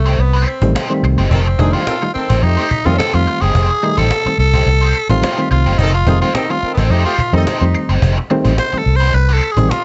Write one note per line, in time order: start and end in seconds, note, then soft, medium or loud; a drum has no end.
0.00 0.16 C2 medium
0.00 0.21 A3 medium
0.06 0.18 A3 medium
0.06 0.19 D#4 medium
0.06 0.19 G4 medium
0.06 0.19 C5 loud
0.19 0.44 C2 loud
0.19 0.27 A3 soft
0.19 0.46 B3 medium
0.19 0.27 C4 soft
0.19 muted overdriven electric guitar stroke soft
0.19 cajon slap medium
0.33 0.46 A3 medium
0.33 0.46 D#4 medium
0.33 0.46 G4 medium
0.33 0.47 C5 medium
0.47 0.73 C4 medium
0.47 muted overdriven electric guitar stroke soft
0.47 cajon slap soft
0.62 0.74 A1 medium
0.62 0.77 D#3 loud
0.62 0.77 G3 medium
0.62 0.77 A3 medium
0.62 0.77 C4 medium
0.62 muted overdriven electric guitar stroke soft
0.62 cajon bass medium
0.75 0.90 A3 medium
0.75 0.90 D#4 medium
0.75 0.91 G4 medium
0.75 0.91 C5 medium
0.75 cajon slap loud
0.90 1.27 D#3 medium
0.90 1.27 G3 medium
0.90 1.27 A3 medium
0.90 1.27 C4 loud
1.03 1.16 C2 medium
1.03 muted overdriven electric guitar stroke soft
1.03 cajon slap soft
1.18 1.30 F#1 loud
1.18 1.29 A3 medium
1.18 1.29 D#4 medium
1.18 1.28 G4 medium
1.18 1.28 C5 medium
1.30 1.56 F1 loud
1.30 1.39 D#3 medium
1.30 1.46 A3 medium
1.30 1.74 C4 medium
1.30 1.39 C4 medium
1.30 1.46 D#4 medium
1.30 1.46 G4 medium
1.30 1.39 A4 loud
1.30 1.45 C5 medium
1.30 cajon bass loud
1.47 muted overdriven electric guitar stroke soft
1.58 1.72 F1 loud
1.58 1.82 D#3 medium
1.58 1.82 G3 medium
1.58 1.82 A3 medium
1.58 1.82 D4 loud
1.58 1.68 D#4 medium
1.58 1.68 G#4 medium
1.58 muted overdriven electric guitar stroke soft
1.58 cajon bass medium
1.73 1.85 A3 soft
1.73 1.84 D#4 medium
1.73 2.13 F4 loud
1.73 1.84 G4 medium
1.73 1.84 C5 medium
1.86 1.95 D#3 medium
1.86 1.95 C4 medium
1.86 1.95 A4 loud
1.86 muted overdriven electric guitar stroke soft
1.86 cajon slap loud
2.02 2.09 D#3 medium
2.02 2.09 G3 medium
2.02 2.09 A3 medium
2.02 2.09 D#4 medium
2.02 muted overdriven electric guitar stroke soft
2.14 2.37 D#3 medium
2.14 2.23 A3 soft
2.14 2.44 C4 medium
2.14 2.37 C4 medium
2.14 2.23 C4 soft
2.14 2.37 A4 loud
2.14 muted fingered electric bass stroke soft
2.14 cajon slap soft
2.30 2.42 A1 medium
2.30 2.41 A3 medium
2.30 2.42 D#4 medium
2.30 2.42 G4 medium
2.30 2.42 C5 medium
2.30 cajon bass medium
2.42 2.56 F2 loud
2.42 2.55 A3 medium
2.42 2.51 A3 soft
2.42 2.50 C4 soft
2.42 2.87 D#4 loud
2.42 2.55 G4 medium
2.42 2.55 C5 loud
2.42 muted overdriven electric guitar stroke soft
2.42 cajon slap medium
2.57 2.65 A3 medium
2.57 2.69 A3 medium
2.57 2.69 D#4 medium
2.57 2.65 G4 medium
2.57 2.70 G4 medium
2.57 2.65 C5 medium
2.57 2.70 C5 medium
2.70 muted overdriven electric guitar stroke soft
2.70 muted fingered electric bass stroke soft
2.70 cajon bass medium
2.85 2.98 F2 medium
2.85 3.00 D#3 loud
2.85 3.00 G3 medium
2.85 3.00 A3 loud
2.85 2.96 C4 loud
2.85 3.00 C4 loud
2.85 2.98 F4 loud
2.85 2.96 A4 loud
2.85 2.96 D#5 loud
2.85 muted overdriven electric guitar stroke soft
2.98 3.14 A3 medium
2.98 3.14 D#4 medium
2.98 3.14 G4 medium
2.98 3.15 A4 loud
2.98 3.14 C5 medium
2.98 cajon slap loud
3.14 3.26 F2 medium
3.14 3.50 D#3 medium
3.14 3.50 G3 medium
3.14 3.50 A3 medium
3.14 3.50 C4 medium
3.14 3.43 F4 loud
3.27 muted overdriven electric guitar stroke soft
3.27 cajon slap soft
3.41 3.54 F#1 medium
3.41 3.53 A3 medium
3.41 3.52 D#4 medium
3.41 3.52 G4 medium
3.41 3.99 G#4 loud
3.41 3.52 C5 medium
3.55 3.68 F1 medium
3.55 3.70 A3 medium
3.55 3.70 D#4 medium
3.55 3.69 G4 medium
3.55 3.69 C5 medium
3.55 cajon bass loud
3.70 muted overdriven electric guitar stroke soft
3.82 4.06 D#3 medium
3.82 4.06 G3 medium
3.82 4.06 A3 medium
3.82 4.06 D#4 loud
3.82 muted overdriven electric guitar stroke soft
3.82 cajon slap soft
3.97 4.10 A1 medium
3.97 4.09 A3 medium
3.97 4.08 D#4 medium
3.97 4.08 G4 soft
3.97 4.38 A4 loud
3.97 4.08 C5 medium
3.97 cajon bass medium
4.11 muted overdriven electric guitar stroke soft
4.11 cajon slap loud
4.26 4.33 D#3 medium
4.26 4.33 G3 medium
4.26 4.33 A3 medium
4.26 4.33 C4 medium
4.26 muted fingered electric bass stroke soft
4.26 muted overdriven electric guitar stroke soft
4.38 4.64 C2 medium
4.38 4.46 A3 soft
4.38 4.46 C4 soft
4.38 5.06 A4 loud
4.38 cajon slap soft
4.54 4.66 A3 medium
4.54 4.67 D#4 medium
4.54 4.67 G4 medium
4.54 4.67 C5 medium
4.54 cajon bass loud
4.66 4.92 C2 loud
4.66 4.74 A3 soft
4.66 4.74 D4 soft
4.66 muted overdriven electric guitar stroke soft
4.66 cajon slap medium
4.81 4.93 A3 medium
4.81 4.94 D#4 medium
4.81 4.94 G4 medium
4.81 4.95 C5 medium
4.95 muted overdriven electric guitar stroke soft
4.95 cajon slap soft
5.09 5.21 A1 medium
5.09 5.24 D#3 loud
5.09 5.24 G3 medium
5.09 5.24 A3 medium
5.09 5.24 C4 loud
5.09 5.48 F4 medium
5.09 muted overdriven electric guitar stroke soft
5.09 cajon bass medium
5.23 5.37 A3 medium
5.23 5.38 D#4 medium
5.23 5.38 G4 medium
5.23 5.38 C5 medium
5.23 cajon slap loud
5.38 5.74 D#3 medium
5.38 5.74 G3 medium
5.38 5.74 A3 medium
5.38 5.74 C4 medium
5.51 5.64 C2 medium
5.51 5.80 F4 medium
5.51 muted overdriven electric guitar stroke soft
5.51 cajon slap soft
5.66 5.78 F#1 medium
5.66 5.77 A3 medium
5.66 5.76 D#4 medium
5.66 5.76 G4 medium
5.66 5.76 C5 medium
5.78 6.04 F1 loud
5.78 5.88 D#3 medium
5.78 5.94 A3 medium
5.78 5.88 C4 medium
5.78 5.93 D#4 medium
5.78 5.94 D#4 medium
5.78 5.93 G4 medium
5.78 5.88 A4 loud
5.78 5.93 C5 medium
5.78 cajon bass loud
5.94 6.20 F4 medium
5.94 muted overdriven electric guitar stroke soft
6.07 6.20 F1 loud
6.07 6.30 D#3 loud
6.07 6.30 G3 medium
6.07 6.30 A3 medium
6.07 6.30 C4 loud
6.07 6.16 D#4 medium
6.07 6.16 G#4 medium
6.07 muted overdriven electric guitar stroke soft
6.07 cajon bass medium
6.21 6.33 A3 soft
6.21 6.32 D#4 soft
6.21 6.36 F4 medium
6.21 6.32 G4 medium
6.21 6.32 C5 medium
6.34 6.44 D#3 medium
6.34 6.44 C4 medium
6.34 6.52 D#4 medium
6.34 6.44 A4 loud
6.34 muted overdriven electric guitar stroke soft
6.34 cajon slap loud
6.50 6.57 D#3 medium
6.50 6.57 G3 medium
6.50 6.57 A3 medium
6.50 6.57 C4 medium
6.50 6.73 F4 medium
6.50 muted overdriven electric guitar stroke soft
6.62 6.85 D#3 loud
6.62 6.70 A3 soft
6.62 6.85 C4 medium
6.62 6.70 C4 soft
6.62 6.85 A4 loud
6.62 muted fingered electric bass stroke soft
6.62 cajon slap soft
6.74 6.89 A1 medium
6.74 6.79 B3 medium
6.74 cajon bass medium
6.78 6.90 A3 medium
6.78 6.92 C4 medium
6.78 6.90 D#4 medium
6.78 6.91 G4 medium
6.78 6.91 C5 medium
6.90 7.04 F2 loud
6.90 7.02 A3 medium
6.90 7.17 A3 medium
6.90 6.98 A3 soft
6.90 6.98 C4 soft
6.90 7.05 D#4 medium
6.90 7.17 D#4 medium
6.90 7.02 G4 loud
6.90 7.17 G4 medium
6.90 7.02 C5 loud
6.90 7.17 C5 medium
6.90 cajon slap medium
7.05 7.13 A3 medium
7.05 7.35 F4 medium
7.05 7.13 G4 medium
7.05 7.13 C5 medium
7.18 muted fingered electric bass stroke soft
7.18 muted overdriven electric guitar stroke soft
7.18 cajon bass medium
7.33 7.45 F2 medium
7.33 7.47 D#3 loud
7.33 7.47 G3 medium
7.33 7.47 A3 medium
7.33 7.47 C4 loud
7.33 7.42 C4 medium
7.33 7.89 D#4 medium
7.33 7.42 A4 medium
7.33 7.42 D#5 loud
7.33 muted overdriven electric guitar stroke soft
7.47 7.61 A3 medium
7.47 7.62 D#4 medium
7.47 7.62 G4 medium
7.47 7.62 C5 medium
7.47 cajon slap loud
7.61 7.73 F2 medium
7.61 7.98 D#3 medium
7.61 7.98 G3 medium
7.61 7.98 A3 medium
7.61 7.98 C4 medium
7.74 muted overdriven electric guitar stroke soft
7.74 cajon slap soft
7.89 8.01 F#1 medium
7.89 8.00 A3 medium
7.89 8.00 D#4 medium
7.89 8.00 G4 medium
7.89 7.99 C5 medium
8.02 8.16 F1 loud
8.02 8.17 A3 medium
8.02 8.17 D#4 medium
8.02 8.16 G4 medium
8.02 8.16 C5 medium
8.02 cajon bass loud
8.17 muted overdriven electric guitar stroke medium
8.30 8.53 D#3 loud
8.30 8.53 G3 loud
8.30 8.53 A3 loud
8.30 8.53 C4 loud
8.30 muted overdriven electric guitar stroke soft
8.30 cajon slap soft
8.45 8.57 A1 medium
8.45 8.56 A3 medium
8.45 8.56 D#4 medium
8.45 8.55 G4 medium
8.45 8.55 C5 medium
8.45 cajon bass medium
8.58 8.80 C5 loud
8.58 muted overdriven electric guitar stroke soft
8.58 cajon slap loud
8.72 8.80 D#3 medium
8.72 8.80 G3 medium
8.72 8.80 A3 medium
8.72 8.80 C4 medium
8.72 muted overdriven electric guitar stroke soft
8.72 muted fingered electric bass stroke soft
8.78 8.98 A4 loud
8.86 9.11 C2 medium
8.86 8.93 A3 soft
8.86 8.94 C4 soft
8.86 cajon slap soft
8.96 9.16 C5 loud
9.00 9.13 A3 medium
9.00 9.13 D#4 medium
9.00 9.14 G4 medium
9.00 9.14 C5 medium
9.14 9.39 C2 loud
9.14 9.21 A3 soft
9.14 9.22 D4 soft
9.14 9.34 B4 loud
9.14 muted overdriven electric guitar stroke soft
9.14 cajon slap medium
9.29 9.41 A3 medium
9.29 9.42 D#4 medium
9.29 9.41 G4 medium
9.29 9.42 C5 medium
9.33 9.53 A4 loud
9.42 muted overdriven electric guitar stroke soft
9.42 cajon slap soft
9.51 9.71 G#4 medium
9.57 9.68 A1 medium
9.57 9.71 D#3 medium
9.57 9.71 G3 medium
9.57 9.71 A3 medium
9.57 9.71 C4 loud
9.57 muted overdriven electric guitar stroke soft
9.57 cajon bass medium
9.70 9.84 F4 medium
9.70 cajon slap loud